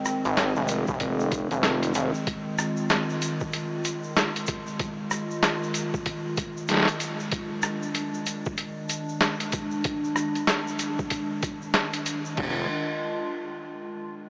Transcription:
0.00 12.33 D#3 medium
0.00 12.33 G#3 medium
0.00 2.27 C4 medium
0.05 cross-stick soft
0.05 shaker loud
0.25 0.54 G#1 medium
0.25 closed hi-hat soft
0.25 shaker soft
0.37 snare loud
0.37 closed hi-hat medium
0.37 shaker medium
0.56 0.85 F1 medium
0.56 shaker soft
0.68 closed hi-hat medium
0.68 shaker medium
0.87 1.48 F1 loud
0.87 kick loud
0.87 shaker soft
1.00 kick medium
1.00 closed hi-hat medium
1.00 shaker medium
1.20 shaker soft
1.32 kick loud
1.32 closed hi-hat medium
1.32 shaker medium
1.51 1.93 F1 loud
1.51 closed hi-hat soft
1.51 shaker soft
1.63 snare loud
1.63 closed hi-hat medium
1.63 shaker soft
1.83 closed hi-hat medium
1.83 shaker soft
1.94 2.12 F1 loud
1.94 closed hi-hat medium
1.94 shaker medium
2.14 shaker soft
2.27 7.32 F4 medium
2.27 kick loud
2.27 closed hi-hat medium
2.27 shaker soft
2.58 cross-stick soft
2.58 shaker medium
2.77 shaker soft
2.90 snare loud
2.90 closed hi-hat medium
2.90 shaker medium
3.10 shaker soft
3.22 closed hi-hat medium
3.22 shaker loud
3.40 kick loud
3.40 shaker soft
3.52 closed hi-hat medium
3.52 shaker soft
3.85 closed hi-hat medium
3.85 shaker medium
4.03 shaker soft
4.17 snare loud
4.17 closed hi-hat medium
4.17 shaker medium
4.36 closed hi-hat medium
4.36 shaker soft
4.47 kick loud
4.47 closed hi-hat medium
4.47 shaker loud
4.67 shaker soft
4.79 kick loud
4.79 closed hi-hat medium
4.79 shaker soft
5.11 cross-stick medium
5.11 shaker medium
5.31 shaker soft
5.43 snare loud
5.43 closed hi-hat medium
5.43 shaker medium
5.63 shaker soft
5.74 closed hi-hat medium
5.74 shaker medium
5.94 kick loud
5.94 shaker soft
6.06 kick medium
6.06 closed hi-hat medium
6.06 shaker medium
6.37 kick loud
6.37 closed hi-hat medium
6.37 shaker medium
6.57 shaker soft
6.68 snare soft
6.68 closed hi-hat medium
6.68 shaker medium
6.71 snare medium
6.74 snare medium
6.77 snare medium
6.80 snare medium
6.83 snare medium
6.85 snare medium
6.85 closed hi-hat medium
6.85 shaker soft
7.00 closed hi-hat medium
7.00 shaker medium
7.20 shaker soft
7.32 12.37 D4 medium
7.32 kick loud
7.32 closed hi-hat medium
7.32 shaker soft
7.62 cross-stick medium
7.62 shaker medium
7.82 shaker soft
7.95 closed hi-hat medium
7.95 shaker soft
8.14 shaker soft
8.26 closed hi-hat medium
8.26 shaker medium
8.45 kick loud
8.45 shaker soft
8.57 closed hi-hat medium
8.57 shaker soft
8.89 closed hi-hat medium
8.89 shaker medium
9.09 shaker soft
9.21 snare loud
9.21 closed hi-hat medium
9.21 shaker medium
9.40 closed hi-hat medium
9.40 shaker soft
9.52 kick loud
9.52 closed hi-hat medium
9.52 shaker medium
9.71 shaker soft
9.84 kick loud
9.84 closed hi-hat medium
9.84 shaker medium
10.04 shaker soft
10.16 cross-stick medium
10.16 shaker medium
10.35 closed hi-hat soft
10.35 shaker soft
10.47 snare loud
10.47 closed hi-hat medium
10.47 shaker medium
10.67 shaker soft
10.79 closed hi-hat medium
10.79 shaker medium
10.99 kick loud
10.99 shaker soft
11.10 kick medium
11.10 closed hi-hat medium
11.10 shaker soft
11.43 kick loud
11.43 closed hi-hat medium
11.43 shaker medium
11.62 shaker soft
11.74 snare loud
11.74 closed hi-hat medium
11.74 shaker soft
11.93 closed hi-hat medium
11.93 shaker soft
12.06 closed hi-hat medium
12.06 shaker medium
12.25 shaker soft
12.37 12.67 F1 loud
12.37 kick loud
12.37 crash medium

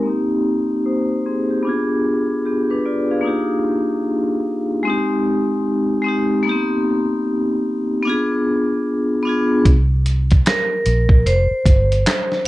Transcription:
0.03 1.36 A#3 medium
0.03 0.85 C4 medium
0.07 0.85 D#4 medium
0.07 0.88 G4 medium
0.86 1.24 D#4 soft
0.86 1.24 C5 medium
1.26 1.49 C4 soft
1.26 1.49 G#4 medium
1.51 1.88 G4 medium
1.63 2.44 B3 medium
1.63 2.45 D4 medium
1.67 2.46 F4 medium
1.67 2.47 G#4 medium
2.46 2.69 B3 soft
2.46 2.69 G4 medium
2.70 2.85 D4 medium
2.70 2.85 B4 medium
2.85 3.09 F4 medium
2.85 3.09 D5 medium
3.11 3.49 G#4 soft
3.11 3.48 F5 medium
3.21 4.55 A#3 medium
3.21 4.56 D4 medium
3.21 4.56 D#4 medium
3.26 4.57 F4 medium
3.26 4.58 G4 medium
4.83 5.85 G#3 medium
4.83 5.86 C4 medium
4.87 5.87 D#4 medium
4.87 5.89 G4 medium
6.02 6.38 G#3 medium
6.02 6.39 C4 medium
6.06 6.40 D#4 medium
6.06 6.41 G4 medium
6.43 7.76 A#3 medium
6.43 6.53 B3 medium
6.47 7.78 D#4 medium
6.47 7.79 G4 medium
6.52 7.80 C4 medium
8.03 9.05 B3 medium
8.03 9.06 D4 medium
8.07 9.07 F4 medium
8.07 9.08 G#4 medium
9.23 9.58 B3 medium
9.23 9.59 D4 medium
9.27 9.60 F4 medium
9.27 9.62 G#4 medium
9.65 10.42 C2 medium
9.65 kick loud
9.65 closed hi-hat medium
10.06 closed hi-hat medium
10.31 kick medium
10.31 closed hi-hat soft
10.46 11.29 A#4 medium
10.46 snare loud
10.46 clap medium
10.46 closed hi-hat medium
10.86 11.23 A#1 medium
10.86 closed hi-hat medium
11.09 kick medium
11.26 11.49 F1 medium
11.26 12.48 C5 medium
11.26 closed hi-hat medium
11.51 muted fingered electric bass stroke soft
11.66 12.03 G1 medium
11.66 kick medium
11.66 closed hi-hat medium
11.92 closed hi-hat soft
12.07 snare loud
12.07 clap medium
12.07 closed hi-hat medium
12.32 snare soft

